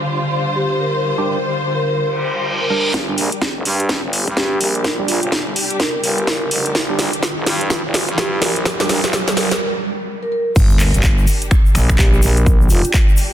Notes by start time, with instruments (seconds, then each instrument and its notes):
Already playing: string section D3 G3 F4 C5
0.56 vibraphone G4
0.70 vibraphone G4
0.80 vibraphone A#4
0.94 vibraphone A#4
1.18 synth stab G3 D4 G4, vibraphone A#4
1.75 vibraphone A#4
1.89 vibraphone A#4
1.99 reverse cymbal
2.61 vibraphone A#4
2.70 synth stab G3 D4 A#4, vibraphone A#4
2.94 fm bass G1, string section G3 D4 G4, kick, snare, closed hi-hat, riser
3.08 synth stab G3 D4 G4
3.18 fm bass A#1, open hi-hat
3.32 closed hi-hat
3.42 kick, snare, closed hi-hat
3.56 fm bass F1
3.65 fm bass G2, open hi-hat
3.80 closed hi-hat
3.89 kick, snare, closed hi-hat
4.04 fm bass G1
4.13 open hi-hat
4.28 fm bass G2, kick, closed hi-hat
4.37 vibraphone G4, kick, snare, closed hi-hat
4.51 vibraphone G4
4.60 fm bass A#1, vibraphone A#4, open hi-hat
4.75 vibraphone A#4, closed hi-hat
4.84 kick, snare, closed hi-hat
4.99 synth stab G3 D4 G4
5.08 fm bass A#1, vibraphone F4, open hi-hat
5.23 fm bass G1, closed hi-hat
5.32 kick, snare, closed hi-hat
5.56 open hi-hat
5.70 closed hi-hat
5.80 vibraphone A#4, kick, snare, closed hi-hat
6.03 fm bass G1, vibraphone A#4, open hi-hat
6.18 closed hi-hat
6.27 fm bass G1, kick, snare, closed hi-hat
6.51 fm bass F1, open hi-hat
6.66 closed hi-hat
6.75 fm bass G1, kick, snare, closed hi-hat
6.89 synth stab G3 D4 G4
6.99 fm bass A#1, snare, open hi-hat
7.13 closed hi-hat
7.23 kick, snare, closed hi-hat
7.37 fm bass F1
7.46 fm bass G2, snare, open hi-hat
7.61 closed hi-hat
7.70 kick, snare, closed hi-hat
7.85 fm bass G1
7.94 snare, open hi-hat
8.09 fm bass G2, kick, closed hi-hat
8.18 vibraphone G4, kick, snare, closed hi-hat
8.41 fm bass A#1, vibraphone A#4, snare, open hi-hat
8.56 vibraphone A#4, closed hi-hat
8.65 kick, snare, closed hi-hat
8.80 synth stab G3 D4 G4, vibraphone A#4, snare
8.89 fm bass A#1, snare, open hi-hat
9.04 fm bass G1, snare, closed hi-hat
9.13 kick, snare, closed hi-hat
9.28 snare
9.37 fm bass G1, vibraphone A#4, snare, open hi-hat
9.51 vibraphone A#4, snare, closed hi-hat
10.23 vibraphone A#4
10.32 vibraphone A#4
10.56 fm bass G1, string section G3 D4 G4, kick, closed hi-hat, crash, sub drop, shaker
10.70 shaker
10.80 clap, open hi-hat, shaker
10.94 fm bass G1, closed hi-hat, shaker
11.03 kick, clap, closed hi-hat, shaker
11.18 shaker
11.27 open hi-hat, shaker
11.41 closed hi-hat, shaker
11.51 finger snap, kick, closed hi-hat, shaker
11.66 shaker
11.75 fm bass A#1, finger snap, open hi-hat, shaker
11.89 finger snap, kick, closed hi-hat, shaker
11.99 fm bass A#1, vibraphone G4, kick, clap, closed hi-hat, shaker
12.13 vibraphone G4, shaker
12.22 fm bass A#1, vibraphone A#4, open hi-hat, shaker
12.37 vibraphone A#4, closed hi-hat, shaker
12.46 kick, closed hi-hat, shaker
12.61 shaker
12.69 fm bass F1, vibraphone F4, open hi-hat, shaker
12.85 closed hi-hat, shaker
12.94 kick, clap, closed hi-hat, shaker
13.09 shaker
13.17 open hi-hat, shaker